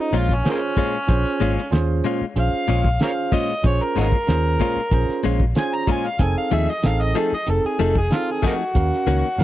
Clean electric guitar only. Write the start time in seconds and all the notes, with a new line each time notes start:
0.13 A#2 G#3 C#4 F4
0.77 A#2 G#3 C#4 F4
1.40 A#2 G#3 C#4 F4
2.04 A#2 G#3 C#4 F4
2.68 A#2 G#3 C#4 F4
3.32 A#2 G#3 C#4 F4
3.96 A#2 G#3 C#4 F4
4.60 A#2 G#3 C#4 F4
5.24 A#2 G#3 C#4 F4
5.87 A#2 G#3 C#4 F4
6.51 F3 A3 D#4 G#4
7.15 F3 A3 D#4 G#4
7.79 F3 A3 D#4 G#4
8.42 F3 A3 D#4 G#4
9.07 D#3 A#3 C#4 F#4